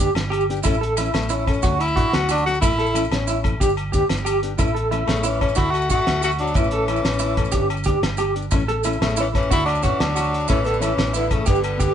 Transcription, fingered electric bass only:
0.15 0.61 G1 medium
0.66 1.12 A1 loud
1.14 1.60 A1 medium
1.64 1.95 D2 medium
1.97 2.04 A1 medium
2.14 2.60 D2 medium
2.63 3.09 A1 medium
3.11 3.58 A1 medium
3.61 3.92 G1 medium
3.95 4.02 D2 medium
4.09 4.56 G1 medium
4.59 5.06 A1 medium
5.08 5.54 A1 medium
5.58 5.89 D2 medium
5.90 5.98 A1 medium
6.08 6.54 D2 loud
6.55 7.02 A1 loud
7.04 7.51 A1 medium
7.54 7.85 G1 medium
7.87 7.94 D2 medium
8.02 8.49 G1 loud
8.53 8.99 A1 medium
9.01 9.47 A1 medium
9.52 9.82 D2 medium
9.84 9.91 A1 medium
10.00 10.46 D2 medium
10.50 10.96 A1 medium
10.98 11.44 A1 medium
11.48 11.78 G1 medium
11.81 11.88 D2 medium

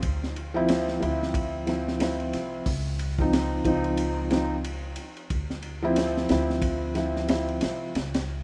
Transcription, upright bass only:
0.03 0.99 D2 medium
1.02 2.31 D2 loud
2.34 2.64 C2 medium
2.66 3.63 C#2 loud
3.65 4.95 C#2 medium
5.30 6.27 D2 medium
6.30 7.59 D2 loud
7.63 7.92 C2 medium
7.95 8.43 C#2 medium

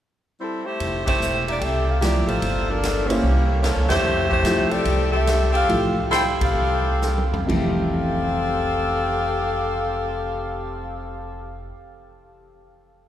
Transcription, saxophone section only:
0.40 0.65 G3 medium
0.40 0.65 C4 medium
0.40 0.65 E4 medium
0.40 0.65 A4 medium
0.66 1.05 A3 medium
0.66 1.05 E4 medium
0.66 1.05 G4 medium
0.66 1.05 C5 medium
1.06 1.44 A3 medium
1.06 1.44 E4 medium
1.06 1.44 G4 medium
1.06 1.44 C5 medium
1.48 1.61 A#3 medium
1.48 1.60 E4 medium
1.48 1.60 G4 medium
1.48 1.61 D5 medium
1.61 1.87 C4 medium
1.61 1.86 G4 medium
1.61 1.86 A4 medium
1.61 1.87 E5 medium
1.87 2.02 C4 medium
1.87 2.01 G4 medium
1.87 2.01 A4 medium
1.87 2.01 F5 medium
2.01 2.26 A#3 medium
2.01 2.26 E4 medium
2.01 2.26 G4 medium
2.01 2.26 D5 medium
2.27 2.68 A#3 medium
2.27 2.68 F4 medium
2.27 2.68 A4 medium
2.27 2.68 C5 medium
2.68 3.09 F3 medium
2.68 3.09 D4 medium
2.68 3.09 A4 medium
2.68 3.09 A#4 medium
3.08 3.63 E3 medium
3.08 3.61 A#3 medium
3.08 3.62 C#4 medium
3.08 3.63 G4 medium
3.63 3.88 F3 medium
3.63 3.87 A#3 medium
3.63 3.88 C#4 medium
3.63 3.88 A4 medium
3.89 4.27 A3 medium
3.89 4.27 E4 medium
3.89 4.27 G4 medium
3.89 4.27 C5 medium
4.30 4.68 A3 medium
4.30 4.68 E4 medium
4.30 4.68 G4 medium
4.30 4.69 C5 medium
4.71 5.12 C4 medium
4.71 5.11 G4 medium
4.71 5.12 A4 medium
4.71 5.12 D5 loud
5.13 5.51 C4 medium
5.13 5.51 G4 medium
5.13 5.51 A4 medium
5.13 5.51 E5 medium
5.52 5.84 C4 medium
5.52 5.84 G4 medium
5.52 5.84 A4 medium
5.52 5.84 F5 loud
6.12 6.25 E4 medium
6.12 6.25 A4 medium
6.12 6.25 C5 medium
6.12 6.25 G5 medium
6.41 7.29 C4 medium
6.41 7.28 G4 medium
6.41 7.28 A4 medium
6.41 7.29 F5 medium
7.49 11.70 C4 medium
7.49 11.70 G4 medium
7.49 11.70 A4 medium
7.49 11.71 F5 medium

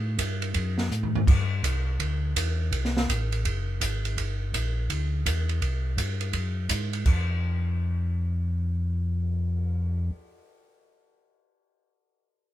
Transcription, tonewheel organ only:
0.00 0.18 A2 medium
0.18 0.54 G2 medium
0.55 0.90 F#2 medium
0.91 1.26 A2 medium
1.27 1.62 G2 medium
1.63 1.99 C2 medium
1.99 2.35 D2 medium
2.36 2.71 E2 medium
2.72 3.07 C2 medium
3.09 3.44 A1 medium
3.45 3.80 F#1 medium
3.81 4.16 G#1 medium
4.17 4.52 G1 medium
4.54 4.89 A#1 medium
4.90 5.25 D2 medium
5.26 5.61 E2 medium
5.62 5.97 C2 medium
5.97 6.33 G2 medium
6.33 6.69 F#2 medium
6.69 7.04 G#2 medium
7.06 10.10 F2 medium

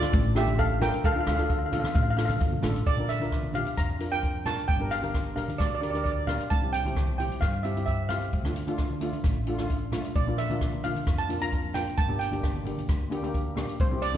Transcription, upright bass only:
0.13 0.88 A1 loud
1.04 1.23 D2 medium
1.27 1.83 D2 medium
1.95 2.33 A1 loud
2.41 2.61 G1 medium
2.63 2.84 A1 medium
2.86 3.61 A#1 medium
3.78 4.52 F2 medium
4.69 5.44 G1 medium
5.60 6.35 D2 medium
6.51 7.26 C2 medium
7.42 8.17 G2 medium
8.33 9.08 D2 medium
9.24 9.99 A1 medium
10.15 10.90 A#1 medium
11.07 11.81 F2 medium
11.98 12.73 G1 medium
12.89 13.63 D2 medium
13.80 14.17 C2 medium

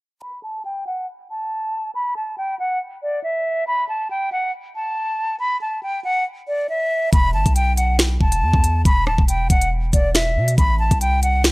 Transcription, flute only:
0.22 0.42 B5 loud
0.43 0.63 A5 medium
0.65 0.85 G5 medium
0.87 1.06 F#5 medium
1.30 1.91 A5 medium
1.95 2.14 B5 medium
2.16 2.36 A5 medium
2.38 2.57 G5 medium
2.59 2.79 F#5 medium
3.03 3.22 D5 medium
3.24 3.64 E5 medium
3.67 3.87 B5 loud
3.89 4.08 A5 medium
4.10 4.30 G5 medium
4.32 4.52 F#5 medium
4.76 5.36 A5 medium
5.40 5.59 B5 medium
5.61 5.81 A5 medium
5.83 6.03 G5 medium
6.04 6.24 F#5 medium
6.48 6.67 D5 medium
6.69 7.10 E5 medium
7.13 7.32 B5 loud
7.34 7.54 A5 medium
7.56 7.75 G5 medium
7.77 7.97 F#5 medium
8.21 8.82 A5 medium
8.86 9.05 B5 loud
9.07 9.27 A5 medium
9.29 9.48 G5 medium
9.50 9.70 F#5 medium
9.93 10.13 D5 medium
10.14 10.55 E5 medium
10.58 10.78 B5 loud
10.79 10.99 A5 medium
11.01 11.21 G5 medium
11.23 11.42 F#5 medium

